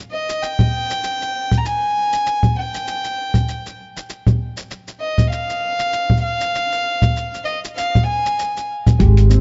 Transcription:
0.11 D#5
0.29 shaker
0.42 G5, shaker
0.59 low conga, shaker
0.90 shaker
1.04 shaker
1.22 shaker
1.52 low conga, shaker
1.57 A#5
1.65 G#5, shaker
2.13 shaker
2.26 shaker
2.43 low conga, shaker
2.57 G5
2.74 shaker
2.88 shaker
3.04 shaker
3.34 low conga, shaker
3.48 shaker
3.66 shaker
3.97 shaker
4.10 shaker
4.27 low conga, shaker
4.57 shaker
4.71 shaker
4.88 shaker
5.00 D#5
5.18 low conga, shaker
5.31 F5, shaker
5.50 shaker
5.79 shaker
5.93 shaker
6.10 low conga
6.17 shaker
6.23 F5
6.41 shaker
6.55 shaker
6.72 shaker
7.02 low conga, shaker
7.16 shaker
7.34 shaker
7.45 D#5
7.65 shaker
7.77 F5, shaker
7.95 low conga, shaker
8.07 G#5
8.26 shaker
8.39 shaker
8.57 shaker
8.87 low conga, shaker
8.99 G#1 G#3 G4, kick, closed hi-hat, shaker
9.17 closed hi-hat, shaker
9.30 C4, shaker

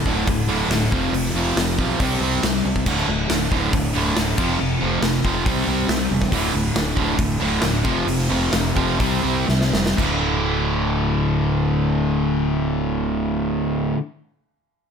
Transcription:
Already playing: D2 A2 D3
0.05 D1 D2 A2 D3, kick
0.26 D1 D2 A2, kick, open hi-hat
0.47 D1 D2 A2 D3
0.68 D1 D2 A2, snare, open hi-hat
0.73 D3
0.92 F1 F2 C3 F3, kick
1.12 F1 F2 C3, open hi-hat
1.25 snare
1.34 F1 F2 C3 F3
1.56 F1 F2 C3, snare, open hi-hat
1.78 B1 F2 C3 F3, kick
2.00 C2 C3 G3 C4, kick, open hi-hat
2.20 C2 C3 G3 C4
2.43 C2 C3 G3, snare, open hi-hat
2.65 C2 C3 G3
2.76 kick
2.86 D1 D2 A2 D3, kick, crash
2.97 snare
3.07 D1 D2 A2
3.29 D1 D2 A2, snare, open hi-hat
3.51 D1 D2 A2 D3, kick
3.73 D1 D2 A2, kick, open hi-hat
3.93 D1 D2 A2 D3
4.15 D1 D2 A2 D3, snare, open hi-hat
4.38 F1 F2 C3 F3, kick, crash
4.58 F1 F2 C3
4.80 F1 F2 C3 F3
5.02 F1 F2 C3, snare, open hi-hat
5.23 F1 F2 C3 F3, kick
5.45 C2 C3 G3 C4, kick, open hi-hat
5.67 C2 C3 G3 C4
5.89 C2 C3 G3, snare, open hi-hat
6.09 E1 C3 G3
6.22 kick, snare
6.31 D1 D2 A2 D3, kick, open hi-hat
6.53 D1 D2 A2
6.73 D1 D2 A2, snare, open hi-hat
6.95 D1 D2 A2 D3, kick
7.16 D1 D2 A2, kick, open hi-hat
7.39 D1 D2 A2 D3
7.61 D1 D2 A2 D3, snare, open hi-hat
7.84 F1 F2 C3 F3, kick
8.07 F1 F2 C3, open hi-hat
8.19 snare
8.30 F1 F2 C3 F3
8.53 F1 F2 C3, snare, open hi-hat
8.76 F1 F2 C3 F3, kick
9.00 C2 C3 G3 C4, kick, open hi-hat
9.23 C2 C3 G3 C4
9.48 C2 C3 G3, snare
9.61 snare
9.73 F1 C3 G3, snare
9.86 snare
9.97 D1 D2 A2 D3, kick, crash

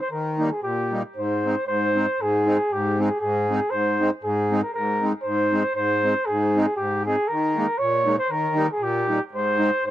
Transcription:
0.01 C5
0.11 D#3 A#4
0.39 G3 A#3 D#4
0.52 G#4
0.63 A#2 G4
0.91 G3 A#3 D#4
1.16 G#2 C5
1.46 G#3 C4 D#4
1.67 G#2 C5
1.96 G#3 C4 D#4
2.21 G#2 G#4
2.47 G#3 C4 D#4
2.72 G#2 G4
2.99 G#3 C4 D#4 G#4
3.20 G#2 G#4
3.49 G#3 C4 D#4
3.70 G#2 C5
4.00 G#3 C4 D#4
4.24 G#2 G#4
4.51 G#3 C4 D#4
4.62 A#4
4.75 G#2 A#4
5.02 G#3 C4 D#4
5.23 G#2 C5
5.52 G#3 C4 D#4
5.75 G#2 C5
6.03 G#3 C4 D#4
6.26 G#2 G#4
6.57 G#3 C4 D#4
6.76 G#2 G4
7.06 G#3 C4 D#4 G#4
7.28 D#3 A#4
7.57 G#3 A#3 D#4
7.78 A#2 C#5
8.06 G#3 A#3 D#4
8.19 C5
8.30 D#3 A#4
8.55 G3 A#3 D#4
8.71 G#4
8.80 A#2 G4
9.09 G3 A#3 D#4
9.31 G#2 C5
9.59 G#3 C4 D#4
9.84 G#2 C5

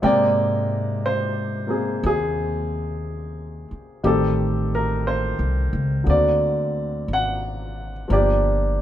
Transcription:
0.02 G#2 C3 G#3 A#3 D5 G5
1.06 C5
1.67 A#3 C4 G#4
2.03 D#2 G#4
3.71 muted upright bass stroke
4.04 A1 D#3 G3 C4 G4 A4
4.75 A#4
5.07 C5
5.39 C2
5.73 C#2
6.04 D2 D3 A#3 C4
6.09 F#4 D5
7.08 G#1
7.13 F#5
8.08 G1 F3 A#3 D4
8.13 G4 D5

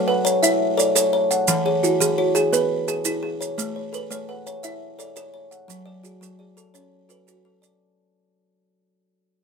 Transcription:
Already playing: A3 A4 C#5
0.08 B4 F#5
0.25 C#5, maracas
0.43 E4 E5, maracas
0.77 A4 C#5 D5, maracas
0.95 A4 C#5, maracas
1.13 C#5
1.31 F#5, maracas
1.48 E3, maracas
1.66 G#4 C#5
1.83 E4 F#4, maracas
2.00 E3 G#4, maracas
2.18 F#4 C#5
2.35 G#4, maracas
2.53 B3 B4, maracas
2.88 G#4, maracas
3.05 E4 G#4, maracas
3.23 G#4
3.41 C#5, maracas
3.58 A3, maracas
3.76 C#5
3.93 A4 B4, maracas
4.11 A3 C#5, maracas
4.29 B4 F#5
4.47 C#5, maracas
4.63 E4 E5, maracas
4.99 A4 C#5 D5, maracas
5.16 A4 C#5, maracas
5.34 C#5
5.51 F#5, maracas
5.68 F#3, maracas
5.86 A4 D5
6.03 F#4 G#4, maracas
6.21 F#3 A4, maracas
6.39 G#4 D5
6.57 A4, maracas
6.74 C#4 C#5, maracas
7.09 F#4 A4 B4, maracas
7.27 F#4 A4, maracas
7.45 A4
7.62 D5, maracas

